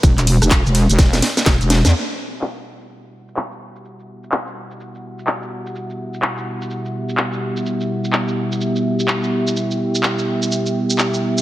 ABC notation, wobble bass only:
X:1
M:4/4
L:1/16
Q:"Swing 16ths" 1/4=126
K:Em
V:1 name="Wobble bass" clef=bass
E,,,3 E,,,2 E,,,2 E,,, E,,,2 z2 E,,, E,,,2 E,, | z16 | z16 | z16 |
z16 | z16 |]